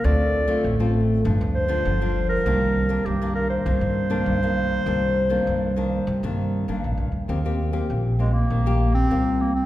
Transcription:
<<
  \new Staff \with { instrumentName = "Clarinet" } { \time 4/4 \key c \minor \tempo 4 = 99 d''4 r4. c''4~ c''16 bes'16~ | bes'4 g'8 bes'16 c''2~ c''16~ | c''2. r4 | \key ees \major r4. aes16 bes8. bes16 c'8. bes16 c'16 | }
  \new Staff \with { instrumentName = "Nylon-string guitar" } { \time 4/4 \key c \minor << { <a c' f'>8. <a c' f'>8 <a c' f'>8. <f b d'>8. <f b d'>8 <f d'>8. | <ees bes d'>8. <ees bes d'>8 <ees bes d'>8. <ees bes d'>8. <ees bes d'>8 <ees bes d'>8. | <ees bes d'>8 r16 <ees bes d'>8. <ees bes d'>8 r16 <ees bes d'>8. <ees bes d'>8. r16 | \key ees \major <bes c' g'>16 <bes c' g'>8 <bes c' g'>8. <bes c' g'>8. <bes c' g'>8. <bes c' g'>8. r16 | } \\ { d4 a,4 g,4 d4 | c4 g,4 c4 g,4 | c4 g,4 c4 g,4 | ees4 bes,4 ees4 bes,4 | } >> }
  \new Staff \with { instrumentName = "Upright bass" } { \clef bass \time 4/4 \key c \minor d,4 a,,4 g,,16 d,8. g,,4 | c,4 c,4 c,16 g,8. c,4 | c,4 c,4 c,16 g,8. g,,16 bes,,16 c,16 d,16 | \key ees \major ees,4 bes,,4 bes,,4 c,4 | }
>>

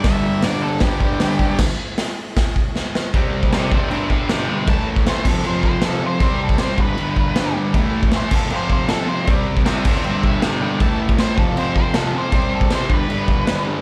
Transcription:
<<
  \new Staff \with { instrumentName = "Lead electric guitar" } { \time 4/4 \key g \lydian \tempo 4 = 156 e''4 d''8 a'8 g'2 | r1 | r4 <c'' e''>8 <g' e''>8 <g' e''>8 <e'' g''>8 <e'' g''>8 <e'' g''>8 | a''8 r8 c''8 a'8 c''8 c''8 a'8 c''8 |
c''8 a'8 c''8 b'2 r8 | r4 c''8 a'8 c''8 c''8 a'8 c''8 | r4 <c'' e''>8 <g' e''>8 <g' e''>8 <e'' g''>8 <e'' g''>8 <e'' g''>8 | a''8 r8 c''8 a'8 c''8 c''8 a'8 c''8 |
c''8 a'8 c''8 b'2 r8 | }
  \new Staff \with { instrumentName = "Distorted electric guitar" } { \clef bass \time 4/4 \key g \lydian <g, d g>4 <g, d g>4 <g, d g>8 <d g>8 <g, d g>8 <d g>8 | r1 | <c g c'>4 <c g c'>8 <g, d g>8 <g, d g>4 <g, d g>8 <g, d g>8 | <a, e a>4 <a, e a>8 <f, c f>8 <f, c f>4 <f, c f>8 <f, c f>8 |
<c g c'>4 <c g c'>8 <g, d g>8 <g, d g>4 <g, d g>8 <g, d g>8 | <a, e a>4 <a, e a>8 <f, c f>8 <f, c f>4 <f, c f>8 <f, c f>8 | <c g c'>4 <c g c'>8 <g, d g>8 <g, d g>4 <g, d g>8 <g, d g>8 | <a, e a>4 <a, e a>8 <f, c f>8 <f, c f>4 <f, c f>8 <f, c f>8 |
<c g c'>4 <c g c'>8 <g, d g>8 <g, d g>4 <g, d g>8 <g, d g>8 | }
  \new DrumStaff \with { instrumentName = "Drums" } \drummode { \time 4/4 <hho bd sn>4 <hho sn>4 <hho bd sn>8 bd8 <hho sn>8 bd8 | <cymc bd sn>4 <hho sn>4 <hho bd sn>8 bd8 sn8 sn8 | <cymc bd>8. bd16 <cymc sn>8 bd8 cymc8 bd8 <cymc sn>4 | <cymc bd>8. bd16 <cymc sn>8 <cymc bd>8 cymc8 bd8 <cymc sn>4 |
<cymc bd>8. bd16 <cymc sn>8 bd8 cymc8 bd8 <cymc sn>4 | <cymc bd>8. bd16 <cymc sn>8 <cymc bd>8 cymc8 bd8 <cymc sn>4 | <cymc bd>8. bd16 <cymc sn>8 <cymc bd>8 cymc8 bd8 <cymc sn>4 | <cymc bd>8. bd16 <cymc sn>8 bd8 cymc8 bd8 <cymc sn>4 |
<cymc bd>8. bd16 <cymc sn>8 bd8 cymc8 bd8 <cymc sn>4 | }
>>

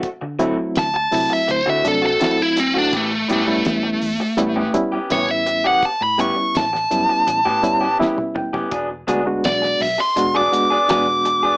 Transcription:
<<
  \new Staff \with { instrumentName = "Lead electric guitar" } { \time 4/4 \key a \mixolydian \tempo 4 = 83 r4 a''16 a''16 a''16 e''16 c''16 e''16 a'16 a'16 a'16 e'16 c'16 d'16 | a8 a2 r8 cis''16 e''8 fis''16 | a''16 b''16 cis'''8 a''2 r4 | r4 d''8 e''16 c'''8 d'''8. d'''4 | }
  \new Staff \with { instrumentName = "Clean electric guitar" } { \time 4/4 \key a \mixolydian r8 <e a c' fis'>16 r4. <e a c' fis'>16 r16 <a c' fis'>16 <e a c' fis'>16 r8 <a c' fis'>16 | <e b cis' g'>16 r16 <e b cis' g'>16 r4. <e b cis' g'>16 r16 <b cis' g'>16 <e b cis' g'>16 r8 <b cis' g'>16 | r8 <e b cis' g'>16 r4. <e b cis' g'>16 r16 <b cis' g'>16 <e b cis' g'>16 r8 <b cis' g'>16 | <fis b d' gis'>16 r16 <fis b d' gis'>16 r4. <fis b d' gis'>16 r16 <b d' gis'>16 <fis b d' gis'>16 r8 <b d' gis'>16 | }
  \new Staff \with { instrumentName = "Reed electric piano" } { \time 4/4 \key a \mixolydian r1 | r1 | r2 r8 cis''8 e''8 g''8 | r1 | }
  \new Staff \with { instrumentName = "Reed electric piano" } { \time 4/4 \key a \mixolydian r8 <fis a c' e'>8. r16 <fis a c' e'>8. r16 <fis a c' d'>16 r16 <fis a c' e'>4 | r8 <g b cis' e'>16 <g b cis' e'>8. r8 <g b cis' e'>16 r16 <g b cis' e'>16 r16 <g b cis' e'>4 | r8 <g b cis' e'>8. r16 <g b cis' e'>8. r16 <g b cis' e'>16 r16 <g b cis' e'>4 | r8 <gis b d' fis'>16 <gis b d' fis'>8. r8 <gis b d' fis'>16 r16 <gis b d' fis'>16 r16 <gis b d' fis'>4 | }
  \new Staff \with { instrumentName = "Fingered electric bass" } { \clef bass \time 4/4 \key a \mixolydian r16 d8 r16 d,8 c16 r16 d,16 d16 c,8 r4 | a,,8 g,,8 e,8 e,16 r16 a,,8 r8 a,,4~ | a,,16 a,8 r16 a,,8 fis,16 r16 a,,16 a,16 g,,8 r4 | e,,8 d,8 b,,8 b,,16 r16 e,,8 r8 e,,4 | }
  \new DrumStaff \with { instrumentName = "Drums" } \drummode { \time 4/4 <hh bd>8 hh8 <hh sn>8 hho8 hh8 hh8 <hh sn>8 hh8 | <hh bd>8 hh8 <hh sn>8 hho8 hh8 hh8 <hh sn>8 hh8 | <hh bd>8 hh8 <hh sn>16 sn16 hh8 hh8 hh8 sn16 tommh16 toml16 tomfh16 | <hh bd>8 hh8 <hh sn>16 sn16 hho8 hh8 hh8 <hh sn>8 hh8 | }
>>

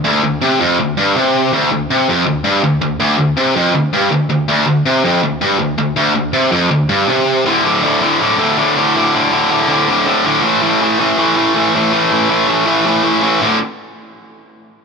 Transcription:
\new Staff \with { instrumentName = "Distorted electric guitar" } { \clef bass \time 4/4 \key d \minor \tempo 4 = 162 d,8 d,8 c8 f,8 d,8 g,8 c4 | d,8 d,8 c8 f,8 d,8 g,8 d,8 d,8 | d,8 d,8 c8 f,8 d,8 g,8 d,8 d,8 | d,8 d,8 c8 f,8 d,8 g,8 d,8 d,8 |
d,8 d,8 c8 f,8 d,8 g,8 c4 | \key a \minor <d, a, d>8 <d, a, d>8 <d, a, d>8 <d, a, d>8 <d, a, d>8 <d, a, d>8 <d, a, d>8 <d, a, d>8 | <d, a, d>8 <d, a, d>8 <d, a, d>8 <d, a, d>8 <d, a, d>8 <d, a, d>8 <d, a, d>8 <d, a, d>8 | <a, e a>8 <a, e a>8 <a, e a>8 <a, e a>8 <a, e a>8 <a, e a>8 <a, e a>8 <a, e a>8 |
<a, e a>8 <a, e a>8 <a, e a>8 <a, e a>8 <a, e a>8 <a, e a>8 <a, e a>8 <a, e a>8 | <d, a, d>8 r2. r8 | }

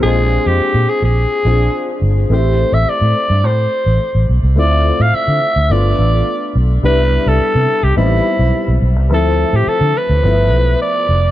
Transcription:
<<
  \new Staff \with { instrumentName = "Alto saxophone" } { \time 4/4 \key a \minor \tempo 4 = 106 aes'8. g'8. aes'16 aes'4.~ aes'16 r8 | c''8. e''16 d''4 c''4. r8 | d''8. f''16 e''4 d''4. r8 | b'8. a'4 g'16 e'4. r8 |
a'8. g'16 a'8 b'4. d''4 | }
  \new Staff \with { instrumentName = "Grand piano" } { \time 4/4 \key a \minor << { <bes g'>16 r2. r8. | r1 | r1 | r1 |
r1 | } \\ { <aes c' d' f'>2~ <aes c' d' f'>8 <c' d' f' aes'>4. | <a c' e' g'>1 | <a c' e' f'>2 <a b d' f'>2 | <g b d' e'>2 <g b c' ees' e'>2 |
<f a c' e'>2 <f a b e'>2 | } >> }
  \new Staff \with { instrumentName = "Fingered electric bass" } { \clef bass \time 4/4 \key a \minor bes,,8. f,16 r16 bes,16 r16 bes,,8 r16 bes,,8 r8 g,,8 | a,,8. a,,16 r16 a,16 r16 g,16 a,8 r16 a,,16 r16 a,,16 b,,16 c,16 | d,8. a,16 r16 d16 r16 d,16 g,,8 a,,8 r8 b,,8 | c,8. c,16 r16 c16 r16 c,16 a,,8 r16 b,,16 r16 b,,16 b,,16 c,16 |
d,8. a,16 r16 d16 r16 d,16 g,,8 b,,8 r8 f,,8 | }
>>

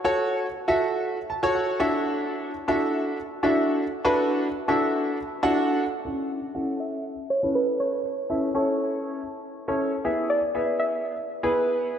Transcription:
<<
  \new Staff \with { instrumentName = "Synth pluck" } { \time 4/4 \key a \major \tempo 4 = 120 r1 | r1 | r1 | r4 fis''8 e''4 cis''8 b'8 cis''8~ |
cis''2~ cis''8 r4. | r8 d''4 e''2~ e''8 | }
  \new Staff \with { instrumentName = "Grand piano" } { \time 4/4 \key a \major << { r2 r8 a''8 fis''4 | r1 | r1 | r1 |
r1 | r1 | } \\ { <fis' a' cis''>8. r8 <fis' a' e''>4 r8 <fis' a' cis''>8. <d' e' fis' a' e''>8~ | <d' e' fis' a' e''>4 r16 <d' e' fis' a' e''>4 r8 <d' e' fis' a' e''>8. r8 | <d' e' fis' a' b'>8. r8 <d' e' fis' a' e''>4 r8 <d' e' fis' a' fis''>8. r8 | <cis' e' a' e''>8. r16 <cis' e' a' e''>4~ <cis' e' a' e''>16 r8 <cis' e' a' b'>4~ <cis' e' a' b'>16 |
r8 <cis' e' a' e''>16 r16 <cis' e' a' cis''>4~ <cis' e' a' cis''>16 r4 <cis' e' a' cis''>8 r16 | <b e' gis' e''>8. r16 <b e' gis' e''>4~ <b e' gis' e''>16 r8 <b e' gis' b'>4~ <b e' gis' b'>16 | } >> }
>>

